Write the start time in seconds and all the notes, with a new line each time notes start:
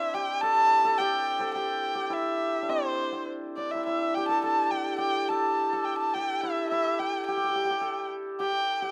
Already playing: C4 D4 E4 E5
0.14 G4 G5
0.41 A4 A5
0.85 A4
0.98 G4 G5
1.39 A4 C5
1.54 G4 G5
1.95 G4
2.10 E4 E5
2.62 D4
2.69 C4 C5
3.12 C4
3.56 D4 D5
3.72 E4 E5
3.86 E4 E5
4.15 G4 G5
4.28 A4 A5
4.43 A4 A5
4.71 G4 G5
4.98 G4 G5
5.29 A4 A5
5.73 A4
5.85 G5
5.98 A5
6.14 G4 G5
6.41 E4 E5
6.70 E4 E5
6.99 G4 G5
7.26 G4 G5
7.37 G4
7.44 G4
7.50 G4
7.55 G4
7.65 G4
7.70 G4
7.81 A4
8.40 G4 G5
8.82 G4